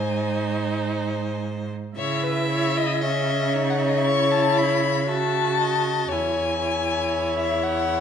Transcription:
0, 0, Header, 1, 5, 480
1, 0, Start_track
1, 0, Key_signature, 4, "minor"
1, 0, Tempo, 1125704
1, 838, Time_signature, 4, 2, 24, 8
1, 839, Tempo, 1056338
1, 1319, Tempo, 1023891
1, 3653, End_track
2, 0, Start_track
2, 0, Title_t, "Violin"
2, 0, Program_c, 0, 40
2, 0, Note_on_c, 0, 80, 93
2, 590, Note_off_c, 0, 80, 0
2, 844, Note_on_c, 0, 73, 88
2, 959, Note_on_c, 0, 71, 83
2, 965, Note_off_c, 0, 73, 0
2, 1079, Note_off_c, 0, 71, 0
2, 1082, Note_on_c, 0, 73, 90
2, 1202, Note_on_c, 0, 75, 94
2, 1209, Note_off_c, 0, 73, 0
2, 1319, Note_off_c, 0, 75, 0
2, 1327, Note_on_c, 0, 76, 90
2, 1636, Note_on_c, 0, 78, 75
2, 1643, Note_off_c, 0, 76, 0
2, 1675, Note_on_c, 0, 76, 72
2, 1682, Note_off_c, 0, 78, 0
2, 1722, Note_on_c, 0, 75, 81
2, 1729, Note_off_c, 0, 76, 0
2, 1765, Note_on_c, 0, 76, 72
2, 1772, Note_off_c, 0, 75, 0
2, 1799, Note_on_c, 0, 85, 93
2, 1806, Note_off_c, 0, 76, 0
2, 1922, Note_on_c, 0, 81, 99
2, 1929, Note_off_c, 0, 85, 0
2, 2046, Note_on_c, 0, 83, 96
2, 2053, Note_off_c, 0, 81, 0
2, 2285, Note_on_c, 0, 81, 100
2, 2292, Note_off_c, 0, 83, 0
2, 2762, Note_on_c, 0, 80, 90
2, 2769, Note_off_c, 0, 81, 0
2, 3357, Note_off_c, 0, 80, 0
2, 3360, Note_on_c, 0, 76, 88
2, 3480, Note_on_c, 0, 78, 96
2, 3487, Note_off_c, 0, 76, 0
2, 3653, Note_off_c, 0, 78, 0
2, 3653, End_track
3, 0, Start_track
3, 0, Title_t, "Violin"
3, 0, Program_c, 1, 40
3, 0, Note_on_c, 1, 72, 72
3, 732, Note_off_c, 1, 72, 0
3, 837, Note_on_c, 1, 76, 89
3, 1313, Note_on_c, 1, 75, 74
3, 1320, Note_off_c, 1, 76, 0
3, 1560, Note_on_c, 1, 73, 88
3, 1567, Note_off_c, 1, 75, 0
3, 2281, Note_on_c, 1, 76, 72
3, 2288, Note_off_c, 1, 73, 0
3, 2520, Note_off_c, 1, 76, 0
3, 2523, Note_on_c, 1, 75, 74
3, 2753, Note_on_c, 1, 73, 80
3, 2760, Note_off_c, 1, 75, 0
3, 2990, Note_off_c, 1, 73, 0
3, 2992, Note_on_c, 1, 73, 73
3, 3653, Note_off_c, 1, 73, 0
3, 3653, End_track
4, 0, Start_track
4, 0, Title_t, "Viola"
4, 0, Program_c, 2, 41
4, 0, Note_on_c, 2, 63, 75
4, 749, Note_off_c, 2, 63, 0
4, 841, Note_on_c, 2, 64, 74
4, 1320, Note_on_c, 2, 61, 72
4, 1327, Note_off_c, 2, 64, 0
4, 1565, Note_on_c, 2, 63, 66
4, 1572, Note_off_c, 2, 61, 0
4, 1807, Note_on_c, 2, 64, 74
4, 1814, Note_off_c, 2, 63, 0
4, 2288, Note_off_c, 2, 64, 0
4, 2290, Note_on_c, 2, 66, 72
4, 2771, Note_on_c, 2, 64, 65
4, 2778, Note_off_c, 2, 66, 0
4, 3653, Note_off_c, 2, 64, 0
4, 3653, End_track
5, 0, Start_track
5, 0, Title_t, "Cello"
5, 0, Program_c, 3, 42
5, 0, Note_on_c, 3, 44, 80
5, 731, Note_off_c, 3, 44, 0
5, 838, Note_on_c, 3, 49, 86
5, 2744, Note_off_c, 3, 49, 0
5, 2763, Note_on_c, 3, 40, 71
5, 3653, Note_off_c, 3, 40, 0
5, 3653, End_track
0, 0, End_of_file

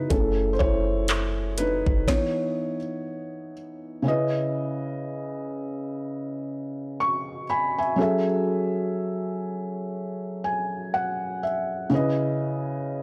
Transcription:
0, 0, Header, 1, 4, 480
1, 0, Start_track
1, 0, Key_signature, 4, "minor"
1, 0, Tempo, 983607
1, 53, Time_signature, 4, 2, 24, 8
1, 6357, End_track
2, 0, Start_track
2, 0, Title_t, "Felt piano"
2, 0, Program_c, 0, 0
2, 0, Control_c, 0, 64, 127
2, 0, Note_on_c, 0, 63, 69
2, 0, Note_on_c, 0, 64, 78
2, 0, Note_on_c, 0, 71, 89
2, 0, Note_on_c, 0, 73, 98
2, 48, Note_on_c, 0, 69, 89
2, 51, Note_on_c, 0, 68, 53
2, 54, Note_on_c, 0, 57, 50
2, 57, Note_off_c, 0, 64, 0
2, 57, Note_on_c, 0, 61, 65
2, 57, Note_on_c, 0, 64, 60
2, 59, Control_c, 0, 64, 0
2, 63, Note_off_c, 0, 63, 0
2, 63, Note_off_c, 0, 71, 0
2, 63, Note_off_c, 0, 73, 0
2, 143, Control_c, 0, 64, 127
2, 247, Note_off_c, 0, 69, 0
2, 252, Note_off_c, 0, 61, 0
2, 259, Note_on_c, 0, 72, 72
2, 289, Note_on_c, 0, 73, 105
2, 291, Note_off_c, 0, 72, 0
2, 292, Note_off_c, 0, 64, 0
2, 300, Note_on_c, 0, 64, 76
2, 757, Note_off_c, 0, 64, 0
2, 772, Note_on_c, 0, 71, 89
2, 781, Note_on_c, 0, 63, 67
2, 785, Note_off_c, 0, 73, 0
2, 993, Note_off_c, 0, 68, 0
2, 994, Note_off_c, 0, 57, 0
2, 1000, Note_off_c, 0, 63, 0
2, 1013, Note_on_c, 0, 73, 88
2, 1015, Note_on_c, 0, 52, 54
2, 1017, Note_on_c, 0, 59, 51
2, 1020, Note_off_c, 0, 71, 0
2, 1020, Control_c, 0, 64, 0
2, 1020, Note_on_c, 0, 63, 62
2, 1022, Note_on_c, 0, 64, 61
2, 1091, Control_c, 0, 64, 127
2, 1348, Note_off_c, 0, 52, 0
2, 1349, Note_off_c, 0, 59, 0
2, 1351, Note_off_c, 0, 63, 0
2, 1714, Note_off_c, 0, 73, 0
2, 1718, Note_off_c, 0, 64, 0
2, 1964, Note_on_c, 0, 49, 78
2, 1971, Note_on_c, 0, 61, 76
2, 1978, Note_on_c, 0, 64, 69
2, 1979, Control_c, 0, 64, 0
2, 1984, Note_on_c, 0, 71, 71
2, 1991, Note_on_c, 0, 75, 90
2, 2077, Control_c, 0, 64, 127
2, 3403, Note_off_c, 0, 75, 0
2, 3417, Note_on_c, 0, 85, 75
2, 3629, Note_off_c, 0, 49, 0
2, 3633, Note_off_c, 0, 61, 0
2, 3636, Note_off_c, 0, 64, 0
2, 3639, Note_off_c, 0, 71, 0
2, 3643, Note_off_c, 0, 85, 0
2, 3658, Note_on_c, 0, 83, 74
2, 3662, Note_on_c, 0, 80, 61
2, 3788, Note_off_c, 0, 83, 0
2, 3790, Note_off_c, 0, 80, 0
2, 3798, Note_on_c, 0, 80, 71
2, 3802, Note_on_c, 0, 76, 55
2, 3885, Note_on_c, 0, 54, 77
2, 3891, Note_on_c, 0, 61, 73
2, 3898, Note_on_c, 0, 68, 74
2, 3900, Control_c, 0, 64, 0
2, 3904, Note_off_c, 0, 76, 0
2, 3905, Note_on_c, 0, 69, 74
2, 3911, Note_on_c, 0, 76, 92
2, 3982, Control_c, 0, 64, 127
2, 4023, Note_off_c, 0, 80, 0
2, 5096, Note_on_c, 0, 80, 76
2, 5318, Note_off_c, 0, 80, 0
2, 5338, Note_on_c, 0, 78, 81
2, 5559, Note_off_c, 0, 78, 0
2, 5571, Note_off_c, 0, 76, 0
2, 5579, Note_on_c, 0, 76, 72
2, 5789, Note_off_c, 0, 54, 0
2, 5793, Note_off_c, 0, 61, 0
2, 5796, Note_off_c, 0, 68, 0
2, 5799, Note_off_c, 0, 76, 0
2, 5800, Note_off_c, 0, 69, 0
2, 5806, Note_on_c, 0, 49, 85
2, 5811, Note_on_c, 0, 61, 75
2, 5818, Note_on_c, 0, 64, 77
2, 5820, Control_c, 0, 64, 0
2, 5826, Note_on_c, 0, 71, 77
2, 5831, Note_on_c, 0, 75, 85
2, 5891, Control_c, 0, 64, 127
2, 6357, Note_off_c, 0, 49, 0
2, 6357, Note_off_c, 0, 61, 0
2, 6357, Note_off_c, 0, 64, 0
2, 6357, Note_off_c, 0, 71, 0
2, 6357, Note_off_c, 0, 75, 0
2, 6357, End_track
3, 0, Start_track
3, 0, Title_t, "808-style bass"
3, 0, Program_c, 1, 38
3, 53, Note_on_c, 1, 30, 105
3, 284, Note_off_c, 1, 30, 0
3, 295, Note_on_c, 1, 30, 104
3, 894, Note_off_c, 1, 30, 0
3, 912, Note_on_c, 1, 30, 93
3, 1009, Note_off_c, 1, 30, 0
3, 6357, End_track
4, 0, Start_track
4, 0, Title_t, "Drums"
4, 51, Note_on_c, 9, 42, 62
4, 52, Note_on_c, 9, 36, 95
4, 100, Note_off_c, 9, 42, 0
4, 101, Note_off_c, 9, 36, 0
4, 294, Note_on_c, 9, 36, 87
4, 343, Note_off_c, 9, 36, 0
4, 528, Note_on_c, 9, 42, 62
4, 535, Note_on_c, 9, 39, 113
4, 576, Note_off_c, 9, 42, 0
4, 584, Note_off_c, 9, 39, 0
4, 769, Note_on_c, 9, 42, 68
4, 818, Note_off_c, 9, 42, 0
4, 910, Note_on_c, 9, 36, 83
4, 959, Note_off_c, 9, 36, 0
4, 1014, Note_on_c, 9, 36, 107
4, 1017, Note_on_c, 9, 38, 89
4, 1062, Note_off_c, 9, 36, 0
4, 1065, Note_off_c, 9, 38, 0
4, 6357, End_track
0, 0, End_of_file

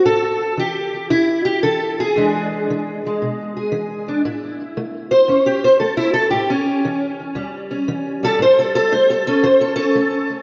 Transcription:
0, 0, Header, 1, 2, 480
1, 0, Start_track
1, 0, Tempo, 520833
1, 53, Time_signature, 4, 2, 24, 8
1, 9605, End_track
2, 0, Start_track
2, 0, Title_t, "Steel-string acoustic guitar"
2, 0, Program_c, 0, 25
2, 48, Note_on_c, 0, 45, 71
2, 51, Note_on_c, 0, 69, 101
2, 502, Note_off_c, 0, 45, 0
2, 528, Note_on_c, 0, 52, 63
2, 534, Note_off_c, 0, 69, 0
2, 548, Note_on_c, 0, 67, 96
2, 982, Note_off_c, 0, 52, 0
2, 1013, Note_off_c, 0, 67, 0
2, 1016, Note_on_c, 0, 64, 94
2, 1017, Note_on_c, 0, 40, 61
2, 1332, Note_off_c, 0, 64, 0
2, 1336, Note_on_c, 0, 67, 92
2, 1468, Note_off_c, 0, 40, 0
2, 1495, Note_off_c, 0, 67, 0
2, 1501, Note_on_c, 0, 69, 94
2, 1513, Note_on_c, 0, 52, 68
2, 1826, Note_off_c, 0, 69, 0
2, 1843, Note_on_c, 0, 68, 85
2, 1956, Note_off_c, 0, 52, 0
2, 1988, Note_on_c, 0, 40, 70
2, 1997, Note_on_c, 0, 52, 49
2, 2003, Note_on_c, 0, 56, 50
2, 2009, Note_on_c, 0, 62, 50
2, 2434, Note_off_c, 0, 40, 0
2, 2470, Note_off_c, 0, 52, 0
2, 2490, Note_on_c, 0, 52, 60
2, 2799, Note_off_c, 0, 56, 0
2, 2824, Note_on_c, 0, 56, 44
2, 2926, Note_off_c, 0, 52, 0
2, 2966, Note_on_c, 0, 47, 57
2, 3275, Note_off_c, 0, 68, 0
2, 3286, Note_on_c, 0, 68, 45
2, 3404, Note_off_c, 0, 47, 0
2, 3426, Note_on_c, 0, 52, 65
2, 3752, Note_off_c, 0, 62, 0
2, 3763, Note_on_c, 0, 62, 46
2, 3874, Note_off_c, 0, 52, 0
2, 3892, Note_off_c, 0, 62, 0
2, 3894, Note_off_c, 0, 68, 0
2, 3903, Note_off_c, 0, 56, 0
2, 3917, Note_on_c, 0, 45, 69
2, 3918, Note_on_c, 0, 64, 50
2, 4360, Note_off_c, 0, 45, 0
2, 4396, Note_on_c, 0, 57, 63
2, 4710, Note_on_c, 0, 72, 84
2, 4839, Note_off_c, 0, 57, 0
2, 4865, Note_on_c, 0, 40, 60
2, 4873, Note_on_c, 0, 61, 48
2, 5027, Note_off_c, 0, 72, 0
2, 5029, Note_off_c, 0, 64, 0
2, 5033, Note_on_c, 0, 67, 76
2, 5188, Note_off_c, 0, 67, 0
2, 5200, Note_on_c, 0, 72, 83
2, 5313, Note_off_c, 0, 40, 0
2, 5338, Note_off_c, 0, 72, 0
2, 5342, Note_on_c, 0, 69, 76
2, 5354, Note_on_c, 0, 57, 66
2, 5499, Note_off_c, 0, 69, 0
2, 5503, Note_on_c, 0, 64, 93
2, 5651, Note_off_c, 0, 64, 0
2, 5655, Note_on_c, 0, 69, 87
2, 5797, Note_off_c, 0, 57, 0
2, 5807, Note_off_c, 0, 69, 0
2, 5810, Note_on_c, 0, 67, 82
2, 5833, Note_on_c, 0, 45, 72
2, 5838, Note_off_c, 0, 61, 0
2, 5976, Note_off_c, 0, 67, 0
2, 5990, Note_on_c, 0, 61, 81
2, 6277, Note_off_c, 0, 45, 0
2, 6311, Note_on_c, 0, 52, 62
2, 6755, Note_off_c, 0, 52, 0
2, 6773, Note_on_c, 0, 40, 64
2, 6779, Note_on_c, 0, 55, 49
2, 6945, Note_off_c, 0, 61, 0
2, 7103, Note_on_c, 0, 61, 47
2, 7226, Note_off_c, 0, 40, 0
2, 7262, Note_on_c, 0, 52, 69
2, 7580, Note_off_c, 0, 55, 0
2, 7583, Note_on_c, 0, 55, 46
2, 7598, Note_on_c, 0, 69, 100
2, 7709, Note_off_c, 0, 52, 0
2, 7730, Note_on_c, 0, 45, 78
2, 7748, Note_off_c, 0, 69, 0
2, 7761, Note_on_c, 0, 72, 94
2, 7789, Note_off_c, 0, 61, 0
2, 7910, Note_off_c, 0, 72, 0
2, 7915, Note_on_c, 0, 69, 82
2, 8055, Note_off_c, 0, 69, 0
2, 8066, Note_on_c, 0, 69, 98
2, 8182, Note_off_c, 0, 45, 0
2, 8221, Note_off_c, 0, 69, 0
2, 8221, Note_on_c, 0, 72, 86
2, 8224, Note_on_c, 0, 57, 64
2, 8379, Note_off_c, 0, 72, 0
2, 8387, Note_on_c, 0, 69, 81
2, 8533, Note_off_c, 0, 69, 0
2, 8544, Note_on_c, 0, 69, 88
2, 8546, Note_off_c, 0, 55, 0
2, 8550, Note_on_c, 0, 61, 48
2, 8668, Note_off_c, 0, 57, 0
2, 8689, Note_on_c, 0, 40, 65
2, 8696, Note_on_c, 0, 72, 88
2, 8699, Note_off_c, 0, 69, 0
2, 8853, Note_off_c, 0, 72, 0
2, 8857, Note_on_c, 0, 69, 86
2, 8981, Note_off_c, 0, 69, 0
2, 8992, Note_on_c, 0, 69, 97
2, 8998, Note_off_c, 0, 61, 0
2, 9009, Note_on_c, 0, 61, 49
2, 9140, Note_off_c, 0, 40, 0
2, 9172, Note_on_c, 0, 57, 63
2, 9481, Note_off_c, 0, 69, 0
2, 9605, Note_off_c, 0, 57, 0
2, 9605, Note_off_c, 0, 61, 0
2, 9605, End_track
0, 0, End_of_file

